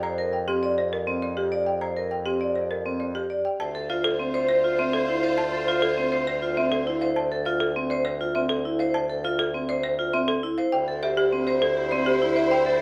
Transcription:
Already playing: bassoon F2
0.03 vibraphone C5, marimba A#5
0.18 vibraphone A#4
0.33 marimba G5
0.48 vibraphone C4, marimba G4
0.63 vibraphone D5
0.78 marimba C5
0.93 marimba A#4
1.07 vibraphone C4
1.22 marimba D5
1.37 marimba G4, vibraphone G4
1.52 vibraphone D5
1.66 marimba G5
1.81 vibraphone C5, marimba A#5
1.96 vibraphone A#4
2.11 marimba G5
2.26 vibraphone C4, marimba G4
2.41 vibraphone D5
2.55 marimba C5
2.71 marimba A#4
2.85 vibraphone C4
3.00 marimba D5
3.15 marimba G4, vibraphone G4
3.30 vibraphone D5
3.45 marimba G5
3.60 bassoon D2, string section F4 C5, clarinet C5, marimba A5
3.75 vibraphone A4
3.90 vibraphone F4, marimba F5
4.04 marimba A4
4.20 vibraphone C4
4.34 vibraphone C5, marimba D5
4.49 marimba C5
4.64 vibraphone F4
4.79 vibraphone C4, marimba E5
4.93 marimba A4
5.09 vibraphone E4
5.23 vibraphone C5, marimba F5
5.38 marimba A5
5.53 vibraphone A4
5.68 vibraphone F4, marimba F5
5.82 marimba A4
5.98 vibraphone C4
6.12 vibraphone C5, marimba D5
6.27 marimba C5
6.42 vibraphone F4
6.57 vibraphone C4, marimba E5
6.72 marimba A4
6.87 vibraphone E4
7.01 vibraphone C5, marimba F5
7.16 marimba A5
7.32 vibraphone A4
7.45 vibraphone F4, marimba F5
7.60 marimba A4
7.76 vibraphone C4
7.90 vibraphone C5, marimba D5
8.05 marimba C5
8.21 vibraphone F4
8.35 vibraphone C4, marimba E5
8.49 marimba A4
8.65 vibraphone E4
8.79 vibraphone C5, marimba F5
8.94 marimba A5
9.10 vibraphone A4
9.24 vibraphone F4, marimba F5
9.39 marimba A4
9.54 vibraphone C4
9.69 vibraphone C5, marimba D5
9.84 marimba C5
9.99 vibraphone F4
10.13 vibraphone C4, marimba E5
10.28 marimba A4
10.43 vibraphone E4
10.58 vibraphone C5, marimba F5
10.72 bassoon D2, string section E4 C5, clarinet C5, marimba G5
10.88 vibraphone A4
11.03 vibraphone G4, marimba E5
11.17 marimba G4
11.32 vibraphone C4
11.47 marimba C5, vibraphone C5
11.62 marimba A4
11.77 vibraphone G4
11.91 vibraphone C4, marimba D5
12.06 marimba G4
12.22 vibraphone E4
12.36 vibraphone C5, marimba E5
12.51 marimba G5
12.66 vibraphone A4

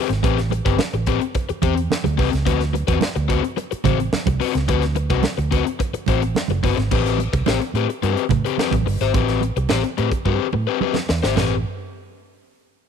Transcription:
0.09 fingered electric bass G#1, muted overdriven electric guitar stroke, snare, closed hi-hat
0.23 fingered electric bass A1, overdriven electric guitar C4 G4 B4, kick, closed hi-hat, muted conga
0.38 snare, closed hi-hat
0.50 muted overdriven electric guitar stroke, closed hi-hat, muted conga
0.65 fingered electric bass G1, overdriven electric guitar C4 G4 B4, kick, closed hi-hat
0.79 muted fingered electric bass stroke, muted overdriven electric guitar stroke, snare, high conga
0.93 fingered electric bass A1, muted overdriven electric guitar stroke, closed hi-hat
1.06 overdriven electric guitar C4 G4 B4, kick, closed hi-hat
1.21 muted overdriven electric guitar stroke, closed hi-hat
1.35 muted overdriven electric guitar stroke, kick, closed hi-hat
1.49 muted overdriven electric guitar stroke, muted fingered electric bass stroke, closed hi-hat
1.62 fingered electric bass E2, overdriven electric guitar C4 G4 C5, kick, closed hi-hat, muted conga
1.76 muted overdriven electric guitar stroke, closed hi-hat
1.90 snare, high conga
2.04 fingered electric bass D2, muted overdriven electric guitar stroke, closed hi-hat, high conga
2.18 fingered electric bass C2, overdriven electric guitar C4 G4 B4, kick, open hi-hat
2.31 fingered electric bass C#2, muted overdriven electric guitar stroke, snare, closed hi-hat
2.46 fingered electric bass D2, overdriven electric guitar C4 F#4 B4, kick, closed hi-hat, muted conga
2.61 snare, closed hi-hat
2.73 muted overdriven electric guitar stroke, closed hi-hat, muted conga
2.87 fingered electric bass E2, overdriven electric guitar C4 F#4 B4, kick, closed hi-hat
3.01 muted overdriven electric guitar stroke, muted fingered electric bass stroke, snare, high conga
3.16 fingered electric bass D2, muted overdriven electric guitar stroke, closed hi-hat
3.28 overdriven electric guitar C4 F#4 B4, kick, closed hi-hat
3.43 muted overdriven electric guitar stroke, closed hi-hat
3.57 muted overdriven electric guitar stroke, closed hi-hat, muted conga
3.71 muted overdriven electric guitar stroke, muted fingered electric bass stroke, closed hi-hat
3.84 fingered electric bass A1, overdriven electric guitar C4 F#4 C5, kick, closed hi-hat, muted conga, low conga
3.99 muted overdriven electric guitar stroke, closed hi-hat
4.13 muted fingered electric bass stroke, snare, high conga
4.26 fingered electric bass C2, muted overdriven electric guitar stroke, kick, closed hi-hat, high conga
4.40 overdriven electric guitar C4 F#4 B4, open hi-hat
4.54 fingered electric bass C#2, muted overdriven electric guitar stroke, snare, closed hi-hat
4.68 fingered electric bass D2, overdriven electric guitar C4 F#4 B4, kick, closed hi-hat, muted conga
4.82 snare, closed hi-hat
4.95 muted overdriven electric guitar stroke, closed hi-hat, muted conga
5.10 fingered electric bass C2, overdriven electric guitar C4 F#4 B4, kick, closed hi-hat
5.23 muted overdriven electric guitar stroke, snare, high conga
5.38 fingered electric bass D2, muted overdriven electric guitar stroke, closed hi-hat
5.51 overdriven electric guitar C4 F#4 B4, kick, closed hi-hat
5.65 muted overdriven electric guitar stroke, closed hi-hat
5.79 muted overdriven electric guitar stroke, kick, closed hi-hat
5.93 muted fingered electric bass stroke, muted overdriven electric guitar stroke, closed hi-hat
6.06 fingered electric bass A1, overdriven electric guitar C4 F#4 C5, kick, closed hi-hat, muted conga
6.22 muted overdriven electric guitar stroke, closed hi-hat
6.35 snare, high conga
6.48 fingered electric bass F#1, muted overdriven electric guitar stroke, closed hi-hat, high conga
6.63 fingered electric bass G1, overdriven electric guitar C4 F#4 B4, kick, open hi-hat, high conga
6.77 fingered electric bass G#1, muted overdriven electric guitar stroke, snare, closed hi-hat
6.91 fingered electric bass A1, overdriven electric guitar C4 G4 B4, kick, crash, muted conga
7.06 snare, closed hi-hat
7.18 closed hi-hat, muted conga
7.33 fingered electric bass C2, muted overdriven electric guitar stroke, kick, closed hi-hat
7.46 fingered electric bass A1, overdriven electric guitar C4 G4 C5, snare, high conga
7.60 muted overdriven electric guitar stroke, closed hi-hat
7.74 fingered electric bass A2, overdriven electric guitar C4 G4 B4, closed hi-hat
7.89 muted overdriven electric guitar stroke, closed hi-hat
8.02 fingered electric bass G2, overdriven electric guitar C4 G4 B4, closed hi-hat, muted conga
8.17 closed hi-hat
8.29 fingered electric bass A2, muted overdriven electric guitar stroke, kick, closed hi-hat, muted conga, low conga
8.45 overdriven electric guitar C4 G4 B4, closed hi-hat
8.58 overdriven electric guitar C4 G4 B4, snare, high conga
8.71 fingered electric bass A1, kick, closed hi-hat, high conga
8.86 fingered electric bass G1, muted overdriven electric guitar stroke, open hi-hat
9.01 fingered electric bass G#1, overdriven electric guitar C4 G4 C5, snare, closed hi-hat
9.14 fingered electric bass A1, overdriven electric guitar C4 G4 B4, kick, closed hi-hat, muted conga
9.28 snare, closed hi-hat
9.41 closed hi-hat, muted conga
9.57 fingered electric bass C2, muted overdriven electric guitar stroke, closed hi-hat
9.69 fingered electric bass A1, overdriven electric guitar C4 G4 C5, snare, high conga
9.84 muted overdriven electric guitar stroke, closed hi-hat
9.98 fingered electric bass A2, overdriven electric guitar C4 G4 B4, closed hi-hat
10.12 muted overdriven electric guitar stroke, kick, closed hi-hat
10.26 fingered electric bass G2, overdriven electric guitar C4 G4 B4, kick
10.53 fingered electric bass A2, muted overdriven electric guitar stroke, muted conga
10.67 overdriven electric guitar C4 G4 B4
10.81 overdriven electric guitar C4 G4 B4, high conga
10.94 snare, high conga
11.09 fingered electric bass E2, muted overdriven electric guitar stroke, snare
11.23 fingered electric bass G#1, overdriven electric guitar C4 G4 C5, snare
11.36 fingered electric bass A1, overdriven electric guitar C4 G4 B4, snare, floor tom, splash, muted conga

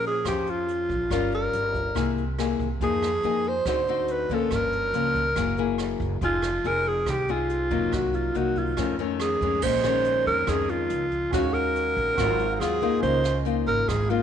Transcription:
Already playing: upright bass A#1, nylon-string guitar A#3 C#4 G#4 C5
0.04 alto saxophone G#4, closed hi-hat
0.25 upright bass F2, nylon-string guitar F3 C#4 G#4 C5, alto saxophone G4, kick, cross-stick, closed hi-hat
0.46 alto saxophone F4, closed hi-hat
0.68 closed hi-hat
0.89 upright bass A#1, kick, closed hi-hat
1.10 upright bass G1, nylon-string guitar G3 C#4 F4 A#4, alto saxophone F4, kick, cross-stick, closed hi-hat
1.32 alto saxophone A#4, closed hi-hat
1.53 upright bass G1, closed hi-hat
1.74 kick, closed hi-hat
1.95 upright bass C2, nylon-string guitar C3 A#3 E4 G#4, kick, cross-stick, closed hi-hat
2.17 closed hi-hat
2.39 nylon-string guitar A#3 E4 G#4, cross-stick, closed hi-hat
2.59 upright bass C2, kick, closed hi-hat
2.81 upright bass F2, nylon-string guitar F3 A#3 D#4 G#4, alto saxophone G#4, kick, closed hi-hat
3.02 cross-stick, closed hi-hat
3.23 upright bass F2, nylon-string guitar A#3 D#4 G#4, closed hi-hat
3.44 closed hi-hat
3.48 alto saxophone C5
3.66 upright bass D2, nylon-string guitar D3 C4 D#4 F#4, alto saxophone C5, kick, cross-stick, closed hi-hat
3.87 nylon-string guitar C4 D#4 F#4, closed hi-hat
4.08 alto saxophone B4, closed hi-hat
4.29 upright bass D2, nylon-string guitar F3 A#3 C#4, kick, closed hi-hat
4.34 alto saxophone A4
4.51 upright bass G1, nylon-string guitar G2, kick, cross-stick, closed hi-hat
4.55 alto saxophone A#4
4.72 closed hi-hat
4.93 upright bass C#2, nylon-string guitar F3 A#3 C#4, closed hi-hat
5.14 kick, closed hi-hat
5.36 upright bass F#1, nylon-string guitar F#3 A#3 E4 G#4, kick, cross-stick, closed hi-hat
5.57 nylon-string guitar A#3 E4 G#4, closed hi-hat
5.78 cross-stick, closed hi-hat
6.00 upright bass F#1, kick, closed hi-hat
6.21 upright bass F1, nylon-string guitar F3 C4 D#4 G#4, alto saxophone F4, kick, closed hi-hat
6.42 cross-stick, closed hi-hat
6.64 upright bass F1, nylon-string guitar C4 D#4 G#4, alto saxophone A#4, closed hi-hat
6.85 alto saxophone G#4, closed hi-hat
7.06 upright bass C2, nylon-string guitar C3, alto saxophone G4, kick, cross-stick, closed hi-hat
7.28 nylon-string guitar C4 D#4 G#4, alto saxophone F4, closed hi-hat
7.49 closed hi-hat
7.71 upright bass F1, nylon-string guitar F#3 A#3 D#4, kick, closed hi-hat
7.92 upright bass C2, nylon-string guitar C3, alto saxophone F#4, kick, cross-stick, closed hi-hat
8.14 alto saxophone F4, closed hi-hat
8.35 upright bass C2, nylon-string guitar F#3 A#3 D#4, alto saxophone F#4, closed hi-hat
8.56 alto saxophone F4, kick, closed hi-hat
8.77 nylon-string guitar F2 D#3 A3 C#4, upright bass F2, kick, cross-stick, closed hi-hat
8.99 nylon-string guitar D#3 A3 C#4, closed hi-hat
9.20 alto saxophone G#4, cross-stick, closed hi-hat
9.41 upright bass F2, nylon-string guitar D#3 G#3 C#4, kick, closed hi-hat
9.59 upright bass A#1, grand piano C#4 G#4, kick, crash
9.63 nylon-string guitar A#2, alto saxophone C5, grand piano C5 D#5
9.84 nylon-string guitar D#3 G#3 C#4, cross-stick
10.04 closed hi-hat
10.26 upright bass F2, alto saxophone A#4, kick, closed hi-hat
10.47 nylon-string guitar F2 D#3 G#3 C#4, upright bass F2, alto saxophone G#4, kick, cross-stick, closed hi-hat
10.69 alto saxophone F4, closed hi-hat
10.90 upright bass C#2, closed hi-hat
11.11 kick, closed hi-hat
11.30 upright bass D#2, nylon-string guitar D#3 G#3 C#4 F#4, grand piano C#4 F#4 G#4, alto saxophone F#4, kick, cross-stick, closed hi-hat
11.36 grand piano F5
11.54 alto saxophone A#4, closed hi-hat
11.75 closed hi-hat
11.96 upright bass A#1, kick, closed hi-hat
12.15 upright bass G#1, nylon-string guitar G#2 F#3, grand piano C4 F#4, kick, cross-stick, closed hi-hat
12.19 nylon-string guitar C4 F4, grand piano A#4 F5
12.39 closed hi-hat
12.55 alto saxophone A#4
12.60 upright bass D#2, nylon-string guitar F#3 C4 F4, alto saxophone G#4, cross-stick, closed hi-hat
12.82 nylon-string guitar A#3 D#4 F4, kick, closed hi-hat
13.00 upright bass C#2, nylon-string guitar C#3, grand piano C#4 F4 A#4, alto saxophone C5, kick, closed hi-hat
13.05 grand piano D#5
13.24 cross-stick, closed hi-hat
13.45 nylon-string guitar A#3 D#4 F4, closed hi-hat
13.66 upright bass G#1, alto saxophone A#4, kick, closed hi-hat
13.88 upright bass G#1, nylon-string guitar G#2, alto saxophone G#4, kick, cross-stick, closed hi-hat
14.10 nylon-string guitar A#3 D#4 F4, alto saxophone F4, closed hi-hat

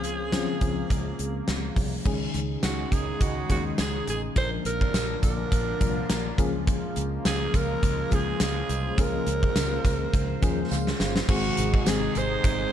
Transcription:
Already playing: fingered electric bass C#2, analog synth pad C#3 F3 G#3 A#3 F4, fm electric piano F3 C4 C#4 G#4, alto saxophone G#4
0.04 closed hi-hat
0.32 fm electric piano F3 C4 C#4 G#4, snare, closed hi-hat
0.61 fingered electric bass C#2, fm electric piano F3 C4 C#4 G#4, kick, closed hi-hat
0.90 fingered electric bass C#2, kick, closed hi-hat
1.19 fingered electric bass C#2, closed hi-hat
1.48 fingered electric bass C#2, snare, closed hi-hat
1.76 fingered electric bass C2, kick, open hi-hat
2.05 fingered electric bass C#2, analog synth pad C#3 D#3 G#3 D#4 G#4, fm electric piano D#3 G#3 C#4 G#4, kick, crash, tambourine
2.34 fingered electric bass C#2, closed hi-hat
2.63 fingered electric bass C#2, alto saxophone F#4, snare, closed hi-hat, tambourine
2.92 fingered electric bass C#2, alto saxophone G#4, kick, closed hi-hat, tambourine
3.21 fingered electric bass C#2, alto saxophone F#4, kick, closed hi-hat, tambourine
3.49 fingered electric bass D#2, fm electric piano D#3 G#3 C#4 G#4, alto saxophone F#4, kick, closed hi-hat, tambourine
3.78 fingered electric bass C#2, alto saxophone G#4, snare, closed hi-hat, tambourine
4.07 fingered electric bass A1, alto saxophone G#4, closed hi-hat, tambourine
4.35 fingered electric bass A#1, analog synth pad A#2 D3 F3 D4 F4, fm electric piano F3 A#3 D4 A4, alto saxophone C5, kick, closed hi-hat, tambourine
4.43 fm electric piano A#4
4.65 fingered electric bass A#1, alto saxophone A#4, closed hi-hat, tambourine
4.81 kick
4.94 fingered electric bass A#1, snare, closed hi-hat, tambourine
5.23 fingered electric bass A#1, alto saxophone A#4, kick, closed hi-hat, tambourine
5.52 fingered electric bass A#1, kick, closed hi-hat, tambourine
5.80 fingered electric bass C2, fm electric piano F3 A#3 D4 A#4, kick, closed hi-hat, tambourine
6.10 fingered electric bass A#1, fm electric piano A#5, snare, closed hi-hat, tambourine
6.38 fingered electric bass C#2, analog synth pad C#3 F3 G#3 A#3, fm electric piano F3 A#3 C#4 G#4 F5, kick, closed hi-hat, tambourine
6.67 kick, closed hi-hat, tambourine
6.96 fingered electric bass C#2, closed hi-hat, tambourine
7.25 fingered electric bass C#2, alto saxophone G#4, snare, closed hi-hat, tambourine
7.54 fingered electric bass C#2, alto saxophone A#4, kick, closed hi-hat, tambourine
7.83 fingered electric bass C#2, kick, closed hi-hat, tambourine
8.11 fingered electric bass C#2, fm electric piano F3 A#3 C#4 G#4, alto saxophone G#4, kick, closed hi-hat, tambourine
8.40 fingered electric bass C#2, alto saxophone G#4, snare, closed hi-hat, tambourine
8.69 fingered electric bass C2, analog synth pad C5, closed hi-hat, tambourine
8.97 fingered electric bass C#2, fm electric piano F3 A#3 C#4 G#4, alto saxophone A#4, kick, closed hi-hat, tambourine
9.27 fingered electric bass C#2, closed hi-hat, tambourine
9.43 kick
9.56 fingered electric bass C#2, snare, closed hi-hat, tambourine
9.85 fingered electric bass C#2, kick, closed hi-hat, tambourine
10.13 fingered electric bass C#2, kick, closed hi-hat
10.42 fingered electric bass D#2, fm electric piano F3 A#3 C#4 G#4, kick, closed hi-hat, tambourine
10.71 fingered electric bass C#2, fm electric piano F5, snare, tambourine
10.87 snare
11.00 fingered electric bass G1, snare, tambourine
11.16 snare
11.28 fingered electric bass G#1, analog synth pad C3 D#3 G#3 D#4 G#4, fm electric piano D#3 G#3 C4 G#4, overdriven electric guitar G#3 D#4 G#4, alto saxophone F#4, kick, crash, tambourine
11.57 fingered electric bass G#1, closed hi-hat, tambourine
11.74 kick
11.86 fingered electric bass G#1, fm electric piano D#3 G#3 C4 G#4, alto saxophone G#4, snare, closed hi-hat, tambourine
12.14 fingered electric bass G#1, overdriven electric guitar D#4 G#4, alto saxophone C5, closed hi-hat, tambourine
12.44 fingered electric bass G#1, overdriven electric guitar G#3 D#4 G#4, kick, closed hi-hat

